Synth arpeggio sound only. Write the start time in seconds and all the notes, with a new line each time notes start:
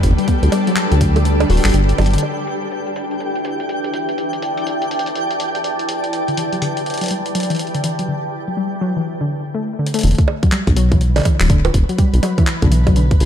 0.18 G3
0.28 B3
0.52 G3
0.67 F#3
0.92 D3
1.01 F#3
1.16 G3
1.25 D3
1.50 F#4
1.65 G3
1.74 D3
1.98 F#3
2.13 D3
6.28 D3
6.37 E3
6.53 F#3
6.62 D3
7.01 F#3
7.11 G3
7.35 F#3
7.50 E3
7.74 D3
7.84 E3
7.99 F#3
8.08 D3
8.48 F#3
8.57 G3
8.81 F#3
8.96 E3
9.21 D3
9.55 A3
9.79 D3
9.94 A3
10.03 D3
10.43 F#3
10.52 G3
10.76 F#3
10.92 E3
11.16 D3
11.25 E3
11.40 F#3
11.50 D3
11.89 F#3
11.98 G3
12.23 F#3
12.38 E3
12.62 D3
12.72 E3
12.87 F#3
12.96 D3